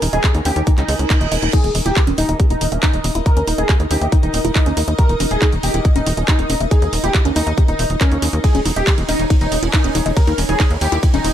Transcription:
Already playing: D#4 A#4 G#5
0.02 D#1 D#4, open hi-hat
0.13 D#1 D#4 G#4 D#5, closed hi-hat
0.24 D#4 G4, kick, clap, closed hi-hat
0.35 D#2 C#4 D#4, closed hi-hat
0.45 D#2 C#4 G4, open hi-hat
0.56 D#2 D#4, closed hi-hat
0.67 D#4, kick, closed hi-hat, reverse cymbal
0.78 C#2 D#4, clap, closed hi-hat
0.88 C#2 D#4, open hi-hat
0.99 C#2 A#4, closed hi-hat
1.10 D#4, kick, clap, closed hi-hat
1.21 D#1 D#5, closed hi-hat
1.32 D#1 D#5, open hi-hat
1.42 D#1 D#4, closed hi-hat
1.53 D#4 G#4 D#5, kick, closed hi-hat, crash
1.64 D#1, closed hi-hat
1.75 E1 D#5, open hi-hat
1.86 D#1 E4 G4, closed hi-hat
1.96 E4, kick, clap, closed hi-hat
2.07 D#1 C#4 D#5, closed hi-hat
2.18 D#1 D#4, open hi-hat
2.29 D#1 D#5, closed hi-hat
2.40 G4, kick, closed hi-hat
2.50 D#1 D#4, closed hi-hat
2.61 D#1 C#4, open hi-hat
2.72 D#1 C#4 E5, closed hi-hat
2.83 D#4, kick, clap, closed hi-hat
2.94 D#1, closed hi-hat
3.04 D#1 D#5, open hi-hat
3.15 D#1 E4, closed hi-hat
3.26 E4 A#4, kick, closed hi-hat
3.37 D#2 C#4, closed hi-hat
3.47 D#1 D#4, open hi-hat
3.58 D#1 D#4 G#4 D#5, closed hi-hat
3.69 D#4 G4, kick, clap, closed hi-hat
3.80 D#2 D#4, closed hi-hat
3.91 D#2 C#4 D#4 G4, open hi-hat
4.01 D#2 E5, closed hi-hat
4.12 D#4, kick, closed hi-hat
4.23 D#1 D#4, closed hi-hat
4.34 D#1 D#5, open hi-hat
4.45 D#1 D#4 E4, closed hi-hat
4.55 D#4 E4, kick, clap, closed hi-hat
4.66 D#2 C#4, closed hi-hat
4.77 D#2 D#4, open hi-hat
4.88 D#2 D#5, closed hi-hat
4.99 G4 A#4, kick, closed hi-hat
5.09 D#1 D#4, closed hi-hat
5.20 E1 C#4, open hi-hat
5.31 D#1 G#4 E5, closed hi-hat
5.42 D#4, kick, clap, closed hi-hat
5.53 D#1, closed hi-hat
5.63 D#1 G4 D#5, open hi-hat
5.74 D#1 E4, closed hi-hat
5.85 E4, kick, closed hi-hat
5.96 D#1 C#4 D#4, closed hi-hat
6.07 D#1 D#4, open hi-hat
6.17 D#1 C#4 D#5, closed hi-hat
6.28 D#4 G4, kick, clap, closed hi-hat
6.39 D#1 D#4, closed hi-hat
6.50 D#1 C#4, open hi-hat
6.60 D#1 E5, closed hi-hat
6.71 D#4 G#4, kick, closed hi-hat
6.82 D#2, closed hi-hat
6.93 D#1 D#5, open hi-hat
7.04 D#1 D#4 E4 G4, closed hi-hat
7.14 D#4 E4, kick, clap, closed hi-hat
7.25 D#2 C#4, closed hi-hat
7.36 D#2 C#4 D#4, open hi-hat
7.47 D#2 D#5, closed hi-hat
7.58 G4, kick, closed hi-hat
7.68 D#1 D#4, closed hi-hat
7.79 D#1 E5, open hi-hat
7.90 D#1 D#4, closed hi-hat
8.01 C#4 A#4, kick, clap, closed hi-hat
8.12 D#2, closed hi-hat
8.22 D#2 C#4, open hi-hat
8.33 D#2 A#4, closed hi-hat
8.44 E4 G#4 G#5, kick, closed hi-hat, ride
8.55 D#1 C#4, closed hi-hat
8.65 E1 D#4, open hi-hat
8.76 D#1 G4 D#5, closed hi-hat
8.87 G4, kick, clap, closed hi-hat, ride
8.98 D#1 D#4 C#5, closed hi-hat
9.09 D#1 C#4 D#4, open hi-hat
9.19 D#1 D#4, closed hi-hat
9.30 D#4, kick, closed hi-hat, ride
9.41 D#1 D#4, closed hi-hat
9.52 D#1 D#5, open hi-hat
9.63 D#1 C#4 E4, closed hi-hat
9.73 D#4 E4, kick, clap, closed hi-hat, ride
9.84 D#1 C#4, closed hi-hat
9.95 D#1 D#4, open hi-hat
10.06 D#1 D#5, closed hi-hat
10.17 G4 A#4, kick, closed hi-hat, ride
10.27 D#2 D#4, closed hi-hat
10.38 D#1 C#4, open hi-hat
10.49 D#1 D#4 G#4, closed hi-hat
10.60 D#4, kick, clap, closed hi-hat, ride
10.71 D#2 D#4, closed hi-hat
10.81 D#2 D#4 G4 D#5, open hi-hat
10.92 D#2 E4, closed hi-hat
11.03 E4, kick, closed hi-hat, ride
11.14 D#1 C#4 D#4, closed hi-hat
11.24 D#1 D#4, open hi-hat

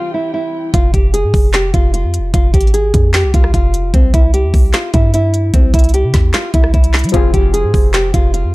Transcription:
Already playing: C3 E3 G3 C4 E4 F4 G4 G5
0.14 E4
0.34 E4
0.74 F1 F4, kick, closed hi-hat
0.94 F1 G4, kick, closed hi-hat
1.14 G#4, closed hi-hat
1.24 G#2
1.34 F1, kick, open hi-hat
1.54 G4, snare, clap, closed hi-hat
1.74 F1 F4, kick, closed hi-hat
1.94 F4, closed hi-hat
2.04 F2
2.14 closed hi-hat
2.19 F1
2.34 F1 F4, kick, closed hi-hat
2.54 G#1 G4, kick, closed hi-hat
2.61 closed hi-hat
2.67 closed hi-hat
2.74 G#4, closed hi-hat
2.94 F2, kick, closed hi-hat
3.14 G4, snare, clap, closed hi-hat
3.24 C2
3.34 C2 F4, kick, closed hi-hat
3.44 cross-stick
3.54 F1 F4, kick, closed hi-hat
3.74 closed hi-hat
3.94 C2 C4, kick, closed hi-hat
4.14 C2 E4, kick, closed hi-hat
4.34 G4, closed hi-hat
4.44 E2
4.54 C2, kick, open hi-hat
4.73 F4, snare, clap, closed hi-hat
4.94 G2 E4, kick, closed hi-hat
5.14 E4, closed hi-hat
5.34 closed hi-hat
5.54 C2 C4, kick, closed hi-hat
5.74 C2 E4, kick, closed hi-hat
5.79 closed hi-hat
5.84 closed hi-hat
5.89 closed hi-hat
5.94 G4, closed hi-hat
6.04 C3
6.14 E2, kick, snare, closed hi-hat
6.34 F4, snare, clap, closed hi-hat
6.54 C2 E4, kick, closed hi-hat
6.64 cross-stick
6.74 C2 E4, kick, closed hi-hat
6.84 closed hi-hat
6.94 snare, clap, closed hi-hat
6.99 closed hi-hat
7.04 G3, closed hi-hat
7.09 F3, closed hi-hat
7.13 F1 C4 F4 G#4, kick, closed hi-hat
7.34 F1 G4, kick, closed hi-hat
7.54 G#4, closed hi-hat
7.64 G#2
7.74 F1, kick, open hi-hat
7.94 G4, snare, clap, closed hi-hat
8.14 F1 F4, kick, closed hi-hat
8.34 F4, closed hi-hat
8.44 F2

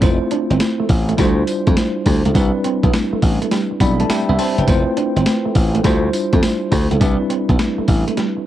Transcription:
0.01 F1 A3 C4 E4 F4 C5, kick, closed hi-hat, tambourine
0.22 muted clean electric guitar stroke
0.31 D4, closed hi-hat
0.50 G1 C4, closed hi-hat
0.60 snare, closed hi-hat, tambourine
0.80 A3
0.89 A1, muted clean electric guitar stroke, kick, open hi-hat, tambourine
1.09 A3, closed hi-hat
1.17 D2 G3 D4 E4 F4 C5, kick, snare, closed hi-hat, tambourine
1.38 muted clean electric guitar stroke
1.47 closed hi-hat, tambourine
1.67 F2 A3, kick, closed hi-hat
1.77 muted clean electric guitar stroke, snare, closed hi-hat, tambourine
2.06 D2 G3, kick, open hi-hat, tambourine
2.25 C#2 A3, closed hi-hat
2.34 C2 G3 C4 D4 E4 B4, kick, closed hi-hat, tambourine
2.54 muted clean electric guitar stroke
2.64 C4, closed hi-hat
2.83 B1 B3, kick, closed hi-hat
2.93 snare, closed hi-hat, tambourine
3.13 A3, muted slap bass stroke
3.22 A1, muted clean electric guitar stroke, kick, open hi-hat, tambourine
3.42 A3, closed hi-hat
3.51 G3, snare, closed hi-hat, tambourine
3.71 muted clean electric guitar stroke
3.80 B1 G3 C4 D4 E4 D5 B5, kick, closed hi-hat, tambourine
4.00 A3 A5, closed hi-hat
4.10 G4 E5 G5, muted slap bass stroke, muted clean electric guitar stroke, snare, closed hi-hat, tambourine
4.29 C2 B3 E5
4.39 C4 C5 A5, open hi-hat, tambourine
4.58 F#1 B4 G5, closed hi-hat
4.67 F1 A3 C4 E4 F4 C5, kick, closed hi-hat, tambourine
4.87 muted clean electric guitar stroke
4.97 D4, closed hi-hat
5.16 G1 C4, closed hi-hat
5.26 snare, closed hi-hat, tambourine
5.45 A3
5.55 A1, muted clean electric guitar stroke, kick, open hi-hat, tambourine
5.75 A3, closed hi-hat
5.84 D2 G3 D4 E4 F4 C5, kick, snare, closed hi-hat, tambourine
6.04 muted clean electric guitar stroke
6.13 closed hi-hat, tambourine
6.33 F2 A3, kick, closed hi-hat
6.43 muted clean electric guitar stroke, snare, closed hi-hat, tambourine
6.72 D2 G3, kick, open hi-hat, tambourine
6.91 C#2 A3, closed hi-hat
7.00 C2 G3 C4 D4 E4 B4, kick, closed hi-hat, tambourine
7.20 muted clean electric guitar stroke
7.30 C4, closed hi-hat
7.49 B1 B3, kick, closed hi-hat
7.59 snare, closed hi-hat, tambourine
7.78 A3, muted slap bass stroke
7.88 A1, muted clean electric guitar stroke, kick, open hi-hat, tambourine
8.08 A3, closed hi-hat
8.17 G3, snare, closed hi-hat
8.37 muted clean electric guitar stroke

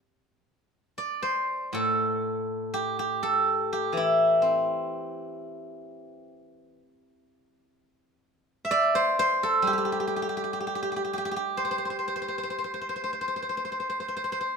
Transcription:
0.98 D5
1.22 C5
1.73 A2 A4
2.74 G4
2.99 G4
3.23 A4
3.73 G4
3.93 E3
3.97 E4
4.42 C4
8.65 E5
8.71 D5
8.95 C5
9.19 C5
9.43 A4
9.62 G3
9.67 G4
9.73 G4
9.78 G4
9.85 G4
9.92 G4
10.00 G4
10.07 G4
10.16 G4
10.22 G4
10.29 G4
10.37 G4
10.44 G4
10.53 G4
10.60 G4
10.67 G4
10.75 G4
10.83 G4
10.92 G4
10.96 G4
11.05 G4
11.13 G4
11.18 G4
11.25 G4
11.31 G4
11.36 G4
11.57 C5
11.65 C5
11.71 C5
11.78 C5
11.85 C5
11.90 C5
11.99 C5
12.08 C5
12.16 C5
12.22 C5
12.28 C5
12.38 C5
12.43 C5
12.50 C5
12.58 C5
12.64 C5
12.74 C5
12.81 C5
12.89 C5
12.96 C5
13.04 C5
13.13 C5
13.21 C5
13.28 C5
13.36 C5
13.42 C5
13.49 C5
13.57 C5
13.65 C5
13.72 C5
13.80 C5
13.90 C5
14.00 C5
14.08 C5
14.17 C5
14.24 C5
14.32 C5
14.41 C5

